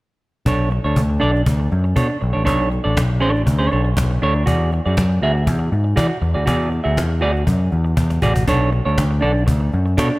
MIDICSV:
0, 0, Header, 1, 5, 480
1, 0, Start_track
1, 0, Tempo, 501672
1, 440, Time_signature, 4, 2, 24, 8
1, 9751, End_track
2, 0, Start_track
2, 0, Title_t, "Clean electric guitar"
2, 0, Program_c, 0, 27
2, 440, Note_on_c, 0, 62, 74
2, 444, Note_on_c, 0, 69, 67
2, 453, Note_on_c, 0, 73, 76
2, 662, Note_off_c, 0, 62, 0
2, 664, Note_off_c, 0, 69, 0
2, 668, Note_off_c, 0, 73, 0
2, 807, Note_on_c, 0, 73, 50
2, 818, Note_on_c, 0, 62, 48
2, 819, Note_on_c, 0, 69, 51
2, 959, Note_off_c, 0, 73, 0
2, 964, Note_off_c, 0, 62, 0
2, 965, Note_off_c, 0, 69, 0
2, 1145, Note_on_c, 0, 62, 85
2, 1152, Note_on_c, 0, 69, 84
2, 1159, Note_on_c, 0, 74, 91
2, 1276, Note_off_c, 0, 69, 0
2, 1276, Note_off_c, 0, 74, 0
2, 1347, Note_off_c, 0, 62, 0
2, 1873, Note_on_c, 0, 62, 70
2, 1874, Note_on_c, 0, 69, 73
2, 1882, Note_on_c, 0, 73, 71
2, 1998, Note_off_c, 0, 73, 0
2, 2001, Note_off_c, 0, 69, 0
2, 2071, Note_off_c, 0, 62, 0
2, 2229, Note_on_c, 0, 73, 48
2, 2234, Note_on_c, 0, 69, 43
2, 2243, Note_on_c, 0, 62, 43
2, 2330, Note_off_c, 0, 62, 0
2, 2334, Note_off_c, 0, 69, 0
2, 2341, Note_off_c, 0, 73, 0
2, 2341, Note_on_c, 0, 62, 67
2, 2346, Note_on_c, 0, 69, 65
2, 2353, Note_on_c, 0, 73, 82
2, 2572, Note_off_c, 0, 62, 0
2, 2574, Note_off_c, 0, 69, 0
2, 2577, Note_off_c, 0, 73, 0
2, 2717, Note_on_c, 0, 74, 56
2, 2722, Note_on_c, 0, 69, 50
2, 2724, Note_on_c, 0, 62, 45
2, 2873, Note_off_c, 0, 74, 0
2, 2876, Note_off_c, 0, 69, 0
2, 2877, Note_off_c, 0, 62, 0
2, 3064, Note_on_c, 0, 62, 79
2, 3067, Note_on_c, 0, 69, 90
2, 3077, Note_on_c, 0, 73, 87
2, 3182, Note_off_c, 0, 73, 0
2, 3194, Note_off_c, 0, 69, 0
2, 3266, Note_off_c, 0, 62, 0
2, 3431, Note_on_c, 0, 73, 76
2, 3438, Note_on_c, 0, 69, 69
2, 3445, Note_on_c, 0, 62, 56
2, 3540, Note_off_c, 0, 62, 0
2, 3543, Note_off_c, 0, 69, 0
2, 3552, Note_on_c, 0, 62, 57
2, 3554, Note_off_c, 0, 73, 0
2, 3554, Note_on_c, 0, 69, 51
2, 3565, Note_on_c, 0, 73, 56
2, 3668, Note_off_c, 0, 73, 0
2, 3677, Note_off_c, 0, 69, 0
2, 3716, Note_off_c, 0, 62, 0
2, 4038, Note_on_c, 0, 62, 67
2, 4047, Note_on_c, 0, 69, 70
2, 4051, Note_on_c, 0, 73, 88
2, 4164, Note_off_c, 0, 73, 0
2, 4168, Note_off_c, 0, 69, 0
2, 4232, Note_off_c, 0, 62, 0
2, 4266, Note_on_c, 0, 66, 74
2, 4275, Note_on_c, 0, 68, 68
2, 4282, Note_on_c, 0, 74, 70
2, 4493, Note_off_c, 0, 66, 0
2, 4498, Note_off_c, 0, 68, 0
2, 4501, Note_off_c, 0, 74, 0
2, 4646, Note_on_c, 0, 74, 47
2, 4653, Note_on_c, 0, 68, 53
2, 4660, Note_on_c, 0, 66, 45
2, 4797, Note_off_c, 0, 74, 0
2, 4800, Note_off_c, 0, 68, 0
2, 4804, Note_off_c, 0, 66, 0
2, 4999, Note_on_c, 0, 66, 74
2, 5005, Note_on_c, 0, 68, 78
2, 5006, Note_on_c, 0, 76, 80
2, 5114, Note_off_c, 0, 76, 0
2, 5117, Note_off_c, 0, 68, 0
2, 5192, Note_off_c, 0, 66, 0
2, 5702, Note_on_c, 0, 66, 74
2, 5707, Note_on_c, 0, 68, 75
2, 5712, Note_on_c, 0, 74, 96
2, 5820, Note_off_c, 0, 74, 0
2, 5827, Note_off_c, 0, 68, 0
2, 5904, Note_off_c, 0, 66, 0
2, 6070, Note_on_c, 0, 74, 49
2, 6077, Note_on_c, 0, 68, 52
2, 6080, Note_on_c, 0, 66, 46
2, 6167, Note_off_c, 0, 66, 0
2, 6175, Note_off_c, 0, 68, 0
2, 6179, Note_on_c, 0, 66, 75
2, 6183, Note_off_c, 0, 74, 0
2, 6187, Note_on_c, 0, 68, 74
2, 6195, Note_on_c, 0, 74, 80
2, 6405, Note_off_c, 0, 66, 0
2, 6413, Note_off_c, 0, 68, 0
2, 6417, Note_off_c, 0, 74, 0
2, 6543, Note_on_c, 0, 76, 59
2, 6548, Note_on_c, 0, 68, 51
2, 6553, Note_on_c, 0, 66, 43
2, 6705, Note_off_c, 0, 76, 0
2, 6708, Note_off_c, 0, 68, 0
2, 6710, Note_off_c, 0, 66, 0
2, 6898, Note_on_c, 0, 66, 82
2, 6906, Note_on_c, 0, 68, 93
2, 6910, Note_on_c, 0, 74, 97
2, 7010, Note_off_c, 0, 74, 0
2, 7021, Note_off_c, 0, 68, 0
2, 7102, Note_off_c, 0, 66, 0
2, 7866, Note_on_c, 0, 66, 75
2, 7869, Note_on_c, 0, 68, 86
2, 7878, Note_on_c, 0, 74, 79
2, 7986, Note_off_c, 0, 74, 0
2, 7993, Note_off_c, 0, 68, 0
2, 8066, Note_off_c, 0, 66, 0
2, 8109, Note_on_c, 0, 62, 75
2, 8113, Note_on_c, 0, 69, 74
2, 8120, Note_on_c, 0, 73, 83
2, 8332, Note_off_c, 0, 62, 0
2, 8337, Note_off_c, 0, 69, 0
2, 8338, Note_off_c, 0, 73, 0
2, 8471, Note_on_c, 0, 73, 57
2, 8478, Note_on_c, 0, 69, 53
2, 8479, Note_on_c, 0, 62, 43
2, 8630, Note_off_c, 0, 73, 0
2, 8633, Note_off_c, 0, 69, 0
2, 8634, Note_off_c, 0, 62, 0
2, 8810, Note_on_c, 0, 62, 75
2, 8823, Note_on_c, 0, 69, 86
2, 8825, Note_on_c, 0, 74, 85
2, 8937, Note_off_c, 0, 74, 0
2, 8938, Note_off_c, 0, 69, 0
2, 9019, Note_off_c, 0, 62, 0
2, 9543, Note_on_c, 0, 62, 89
2, 9552, Note_on_c, 0, 69, 88
2, 9558, Note_on_c, 0, 73, 72
2, 9660, Note_off_c, 0, 73, 0
2, 9668, Note_off_c, 0, 69, 0
2, 9746, Note_off_c, 0, 62, 0
2, 9751, End_track
3, 0, Start_track
3, 0, Title_t, "Picked electric bass"
3, 0, Program_c, 1, 34
3, 441, Note_on_c, 1, 35, 84
3, 743, Note_off_c, 1, 35, 0
3, 808, Note_on_c, 1, 38, 62
3, 901, Note_off_c, 1, 38, 0
3, 922, Note_on_c, 1, 38, 85
3, 1119, Note_off_c, 1, 38, 0
3, 1166, Note_on_c, 1, 35, 72
3, 1361, Note_off_c, 1, 35, 0
3, 1401, Note_on_c, 1, 38, 87
3, 1598, Note_off_c, 1, 38, 0
3, 1646, Note_on_c, 1, 42, 90
3, 1841, Note_off_c, 1, 42, 0
3, 1878, Note_on_c, 1, 47, 82
3, 1983, Note_off_c, 1, 47, 0
3, 2128, Note_on_c, 1, 35, 91
3, 2229, Note_off_c, 1, 35, 0
3, 2250, Note_on_c, 1, 33, 69
3, 2362, Note_off_c, 1, 33, 0
3, 2362, Note_on_c, 1, 35, 108
3, 2663, Note_off_c, 1, 35, 0
3, 2732, Note_on_c, 1, 33, 71
3, 2822, Note_off_c, 1, 33, 0
3, 2843, Note_on_c, 1, 35, 84
3, 3086, Note_off_c, 1, 35, 0
3, 3086, Note_on_c, 1, 33, 71
3, 3280, Note_off_c, 1, 33, 0
3, 3319, Note_on_c, 1, 38, 87
3, 3516, Note_off_c, 1, 38, 0
3, 3568, Note_on_c, 1, 35, 77
3, 3761, Note_off_c, 1, 35, 0
3, 3799, Note_on_c, 1, 35, 88
3, 3996, Note_off_c, 1, 35, 0
3, 4045, Note_on_c, 1, 38, 92
3, 4239, Note_off_c, 1, 38, 0
3, 4277, Note_on_c, 1, 40, 86
3, 4580, Note_off_c, 1, 40, 0
3, 4652, Note_on_c, 1, 42, 79
3, 4741, Note_off_c, 1, 42, 0
3, 4759, Note_on_c, 1, 42, 89
3, 4956, Note_off_c, 1, 42, 0
3, 4994, Note_on_c, 1, 38, 67
3, 5240, Note_off_c, 1, 38, 0
3, 5240, Note_on_c, 1, 40, 85
3, 5436, Note_off_c, 1, 40, 0
3, 5475, Note_on_c, 1, 44, 88
3, 5673, Note_off_c, 1, 44, 0
3, 5716, Note_on_c, 1, 52, 85
3, 5821, Note_off_c, 1, 52, 0
3, 5948, Note_on_c, 1, 40, 83
3, 6056, Note_off_c, 1, 40, 0
3, 6080, Note_on_c, 1, 38, 63
3, 6195, Note_off_c, 1, 38, 0
3, 6195, Note_on_c, 1, 40, 97
3, 6498, Note_off_c, 1, 40, 0
3, 6560, Note_on_c, 1, 38, 67
3, 6672, Note_off_c, 1, 38, 0
3, 6672, Note_on_c, 1, 40, 84
3, 6912, Note_off_c, 1, 40, 0
3, 6912, Note_on_c, 1, 38, 70
3, 7111, Note_off_c, 1, 38, 0
3, 7147, Note_on_c, 1, 42, 78
3, 7349, Note_off_c, 1, 42, 0
3, 7391, Note_on_c, 1, 40, 77
3, 7591, Note_off_c, 1, 40, 0
3, 7626, Note_on_c, 1, 40, 86
3, 7828, Note_off_c, 1, 40, 0
3, 7874, Note_on_c, 1, 33, 92
3, 8073, Note_off_c, 1, 33, 0
3, 8111, Note_on_c, 1, 35, 96
3, 8416, Note_off_c, 1, 35, 0
3, 8479, Note_on_c, 1, 38, 75
3, 8574, Note_off_c, 1, 38, 0
3, 8592, Note_on_c, 1, 38, 90
3, 8792, Note_off_c, 1, 38, 0
3, 8831, Note_on_c, 1, 35, 84
3, 9031, Note_off_c, 1, 35, 0
3, 9065, Note_on_c, 1, 38, 97
3, 9269, Note_off_c, 1, 38, 0
3, 9316, Note_on_c, 1, 42, 89
3, 9515, Note_off_c, 1, 42, 0
3, 9549, Note_on_c, 1, 47, 96
3, 9658, Note_off_c, 1, 47, 0
3, 9751, End_track
4, 0, Start_track
4, 0, Title_t, "Cajon"
4, 441, Note_on_c, 9, 36, 101
4, 537, Note_off_c, 9, 36, 0
4, 571, Note_on_c, 9, 38, 24
4, 667, Note_off_c, 9, 38, 0
4, 676, Note_on_c, 9, 38, 39
4, 771, Note_off_c, 9, 38, 0
4, 817, Note_on_c, 9, 38, 25
4, 913, Note_off_c, 9, 38, 0
4, 921, Note_on_c, 9, 36, 87
4, 1017, Note_off_c, 9, 36, 0
4, 1055, Note_on_c, 9, 38, 24
4, 1151, Note_off_c, 9, 38, 0
4, 1168, Note_on_c, 9, 38, 37
4, 1263, Note_off_c, 9, 38, 0
4, 1302, Note_on_c, 9, 38, 26
4, 1398, Note_off_c, 9, 38, 0
4, 1401, Note_on_c, 9, 36, 97
4, 1496, Note_off_c, 9, 36, 0
4, 1531, Note_on_c, 9, 38, 20
4, 1627, Note_off_c, 9, 38, 0
4, 1640, Note_on_c, 9, 38, 29
4, 1735, Note_off_c, 9, 38, 0
4, 1776, Note_on_c, 9, 38, 24
4, 1871, Note_off_c, 9, 38, 0
4, 1880, Note_on_c, 9, 36, 107
4, 1976, Note_off_c, 9, 36, 0
4, 2006, Note_on_c, 9, 38, 26
4, 2102, Note_off_c, 9, 38, 0
4, 2118, Note_on_c, 9, 38, 25
4, 2213, Note_off_c, 9, 38, 0
4, 2248, Note_on_c, 9, 38, 21
4, 2344, Note_off_c, 9, 38, 0
4, 2361, Note_on_c, 9, 36, 105
4, 2456, Note_off_c, 9, 36, 0
4, 2491, Note_on_c, 9, 38, 26
4, 2586, Note_off_c, 9, 38, 0
4, 2596, Note_on_c, 9, 38, 40
4, 2692, Note_off_c, 9, 38, 0
4, 2739, Note_on_c, 9, 38, 28
4, 2835, Note_off_c, 9, 38, 0
4, 2840, Note_on_c, 9, 36, 99
4, 2845, Note_on_c, 9, 38, 101
4, 2935, Note_off_c, 9, 36, 0
4, 2940, Note_off_c, 9, 38, 0
4, 2972, Note_on_c, 9, 38, 21
4, 3068, Note_off_c, 9, 38, 0
4, 3084, Note_on_c, 9, 38, 38
4, 3179, Note_off_c, 9, 38, 0
4, 3214, Note_on_c, 9, 38, 27
4, 3310, Note_off_c, 9, 38, 0
4, 3317, Note_on_c, 9, 36, 93
4, 3413, Note_off_c, 9, 36, 0
4, 3444, Note_on_c, 9, 38, 20
4, 3540, Note_off_c, 9, 38, 0
4, 3555, Note_on_c, 9, 38, 32
4, 3651, Note_off_c, 9, 38, 0
4, 3687, Note_on_c, 9, 38, 26
4, 3783, Note_off_c, 9, 38, 0
4, 3796, Note_on_c, 9, 36, 107
4, 3808, Note_on_c, 9, 38, 97
4, 3892, Note_off_c, 9, 36, 0
4, 3904, Note_off_c, 9, 38, 0
4, 3924, Note_on_c, 9, 38, 26
4, 4020, Note_off_c, 9, 38, 0
4, 4037, Note_on_c, 9, 38, 25
4, 4133, Note_off_c, 9, 38, 0
4, 4165, Note_on_c, 9, 38, 22
4, 4260, Note_off_c, 9, 38, 0
4, 4277, Note_on_c, 9, 36, 104
4, 4373, Note_off_c, 9, 36, 0
4, 4408, Note_on_c, 9, 38, 24
4, 4503, Note_off_c, 9, 38, 0
4, 4512, Note_on_c, 9, 38, 37
4, 4608, Note_off_c, 9, 38, 0
4, 4651, Note_on_c, 9, 38, 28
4, 4747, Note_off_c, 9, 38, 0
4, 4757, Note_on_c, 9, 36, 93
4, 4761, Note_on_c, 9, 38, 106
4, 4852, Note_off_c, 9, 36, 0
4, 4857, Note_off_c, 9, 38, 0
4, 4889, Note_on_c, 9, 38, 24
4, 4985, Note_off_c, 9, 38, 0
4, 5002, Note_on_c, 9, 38, 38
4, 5097, Note_off_c, 9, 38, 0
4, 5139, Note_on_c, 9, 38, 30
4, 5235, Note_off_c, 9, 38, 0
4, 5235, Note_on_c, 9, 36, 103
4, 5331, Note_off_c, 9, 36, 0
4, 5366, Note_on_c, 9, 38, 22
4, 5461, Note_off_c, 9, 38, 0
4, 5476, Note_on_c, 9, 38, 35
4, 5571, Note_off_c, 9, 38, 0
4, 5610, Note_on_c, 9, 38, 25
4, 5706, Note_off_c, 9, 38, 0
4, 5714, Note_on_c, 9, 36, 111
4, 5732, Note_on_c, 9, 38, 99
4, 5810, Note_off_c, 9, 36, 0
4, 5827, Note_off_c, 9, 38, 0
4, 5841, Note_on_c, 9, 38, 25
4, 5937, Note_off_c, 9, 38, 0
4, 5952, Note_on_c, 9, 38, 27
4, 6048, Note_off_c, 9, 38, 0
4, 6086, Note_on_c, 9, 38, 25
4, 6182, Note_off_c, 9, 38, 0
4, 6194, Note_on_c, 9, 36, 109
4, 6289, Note_off_c, 9, 36, 0
4, 6326, Note_on_c, 9, 38, 24
4, 6422, Note_off_c, 9, 38, 0
4, 6427, Note_on_c, 9, 38, 37
4, 6523, Note_off_c, 9, 38, 0
4, 6570, Note_on_c, 9, 38, 31
4, 6666, Note_off_c, 9, 38, 0
4, 6672, Note_on_c, 9, 36, 93
4, 6678, Note_on_c, 9, 38, 115
4, 6767, Note_off_c, 9, 36, 0
4, 6773, Note_off_c, 9, 38, 0
4, 6807, Note_on_c, 9, 38, 27
4, 6902, Note_off_c, 9, 38, 0
4, 6915, Note_on_c, 9, 38, 34
4, 7010, Note_off_c, 9, 38, 0
4, 7045, Note_on_c, 9, 38, 38
4, 7141, Note_off_c, 9, 38, 0
4, 7147, Note_on_c, 9, 36, 93
4, 7242, Note_off_c, 9, 36, 0
4, 7274, Note_on_c, 9, 38, 21
4, 7370, Note_off_c, 9, 38, 0
4, 7382, Note_on_c, 9, 38, 30
4, 7478, Note_off_c, 9, 38, 0
4, 7514, Note_on_c, 9, 38, 25
4, 7610, Note_off_c, 9, 38, 0
4, 7626, Note_on_c, 9, 36, 110
4, 7631, Note_on_c, 9, 38, 51
4, 7722, Note_off_c, 9, 36, 0
4, 7726, Note_off_c, 9, 38, 0
4, 7754, Note_on_c, 9, 38, 55
4, 7850, Note_off_c, 9, 38, 0
4, 7865, Note_on_c, 9, 36, 79
4, 7961, Note_off_c, 9, 36, 0
4, 7994, Note_on_c, 9, 36, 80
4, 8090, Note_off_c, 9, 36, 0
4, 8110, Note_on_c, 9, 36, 95
4, 8205, Note_off_c, 9, 36, 0
4, 8240, Note_on_c, 9, 38, 25
4, 8336, Note_off_c, 9, 38, 0
4, 8348, Note_on_c, 9, 38, 36
4, 8444, Note_off_c, 9, 38, 0
4, 8491, Note_on_c, 9, 38, 28
4, 8587, Note_off_c, 9, 38, 0
4, 8589, Note_on_c, 9, 36, 93
4, 8593, Note_on_c, 9, 38, 116
4, 8685, Note_off_c, 9, 36, 0
4, 8689, Note_off_c, 9, 38, 0
4, 8725, Note_on_c, 9, 38, 23
4, 8820, Note_off_c, 9, 38, 0
4, 8832, Note_on_c, 9, 38, 36
4, 8927, Note_off_c, 9, 38, 0
4, 8969, Note_on_c, 9, 38, 26
4, 9065, Note_off_c, 9, 38, 0
4, 9067, Note_on_c, 9, 36, 109
4, 9163, Note_off_c, 9, 36, 0
4, 9194, Note_on_c, 9, 38, 23
4, 9290, Note_off_c, 9, 38, 0
4, 9301, Note_on_c, 9, 38, 34
4, 9397, Note_off_c, 9, 38, 0
4, 9435, Note_on_c, 9, 38, 27
4, 9531, Note_off_c, 9, 38, 0
4, 9547, Note_on_c, 9, 36, 111
4, 9558, Note_on_c, 9, 38, 110
4, 9643, Note_off_c, 9, 36, 0
4, 9654, Note_off_c, 9, 38, 0
4, 9672, Note_on_c, 9, 38, 26
4, 9751, Note_off_c, 9, 38, 0
4, 9751, End_track
5, 0, Start_track
5, 0, Title_t, "Muted clean electric guitar strokes"
5, 680, Note_on_c, 9, 29, 41
5, 776, Note_off_c, 9, 29, 0
5, 1048, Note_on_c, 9, 29, 36
5, 1144, Note_off_c, 9, 29, 0
5, 1280, Note_on_c, 9, 29, 46
5, 1375, Note_off_c, 9, 29, 0
5, 1395, Note_on_c, 9, 29, 36
5, 1491, Note_off_c, 9, 29, 0
5, 1528, Note_on_c, 9, 29, 38
5, 1624, Note_off_c, 9, 29, 0
5, 1761, Note_on_c, 9, 29, 42
5, 1857, Note_off_c, 9, 29, 0
5, 2009, Note_on_c, 9, 29, 41
5, 2105, Note_off_c, 9, 29, 0
5, 2113, Note_on_c, 9, 29, 37
5, 2209, Note_off_c, 9, 29, 0
5, 2591, Note_on_c, 9, 29, 33
5, 2687, Note_off_c, 9, 29, 0
5, 2956, Note_on_c, 9, 29, 41
5, 3052, Note_off_c, 9, 29, 0
5, 3193, Note_on_c, 9, 29, 34
5, 3289, Note_off_c, 9, 29, 0
5, 3307, Note_on_c, 9, 29, 37
5, 3403, Note_off_c, 9, 29, 0
5, 3680, Note_on_c, 9, 29, 47
5, 3775, Note_off_c, 9, 29, 0
5, 3799, Note_on_c, 9, 29, 36
5, 3895, Note_off_c, 9, 29, 0
5, 3930, Note_on_c, 9, 29, 38
5, 4025, Note_off_c, 9, 29, 0
5, 4175, Note_on_c, 9, 29, 39
5, 4271, Note_off_c, 9, 29, 0
5, 4524, Note_on_c, 9, 29, 42
5, 4620, Note_off_c, 9, 29, 0
5, 4874, Note_on_c, 9, 29, 50
5, 4970, Note_off_c, 9, 29, 0
5, 5118, Note_on_c, 9, 29, 46
5, 5214, Note_off_c, 9, 29, 0
5, 5231, Note_on_c, 9, 29, 39
5, 5326, Note_off_c, 9, 29, 0
5, 5349, Note_on_c, 9, 29, 48
5, 5445, Note_off_c, 9, 29, 0
5, 5590, Note_on_c, 9, 29, 38
5, 5686, Note_off_c, 9, 29, 0
5, 5831, Note_on_c, 9, 29, 38
5, 5927, Note_off_c, 9, 29, 0
5, 5947, Note_on_c, 9, 29, 38
5, 6042, Note_off_c, 9, 29, 0
5, 6416, Note_on_c, 9, 29, 33
5, 6512, Note_off_c, 9, 29, 0
5, 6787, Note_on_c, 9, 29, 42
5, 6883, Note_off_c, 9, 29, 0
5, 7021, Note_on_c, 9, 29, 40
5, 7117, Note_off_c, 9, 29, 0
5, 7145, Note_on_c, 9, 29, 44
5, 7241, Note_off_c, 9, 29, 0
5, 7262, Note_on_c, 9, 29, 33
5, 7357, Note_off_c, 9, 29, 0
5, 7507, Note_on_c, 9, 29, 47
5, 7602, Note_off_c, 9, 29, 0
5, 7620, Note_on_c, 9, 29, 33
5, 7716, Note_off_c, 9, 29, 0
5, 7753, Note_on_c, 9, 29, 36
5, 7849, Note_off_c, 9, 29, 0
5, 7998, Note_on_c, 9, 29, 37
5, 8093, Note_off_c, 9, 29, 0
5, 8344, Note_on_c, 9, 29, 42
5, 8440, Note_off_c, 9, 29, 0
5, 8713, Note_on_c, 9, 29, 54
5, 8809, Note_off_c, 9, 29, 0
5, 8941, Note_on_c, 9, 29, 36
5, 9036, Note_off_c, 9, 29, 0
5, 9050, Note_on_c, 9, 29, 38
5, 9145, Note_off_c, 9, 29, 0
5, 9187, Note_on_c, 9, 29, 37
5, 9282, Note_off_c, 9, 29, 0
5, 9430, Note_on_c, 9, 29, 37
5, 9526, Note_off_c, 9, 29, 0
5, 9672, Note_on_c, 9, 29, 50
5, 9751, Note_off_c, 9, 29, 0
5, 9751, End_track
0, 0, End_of_file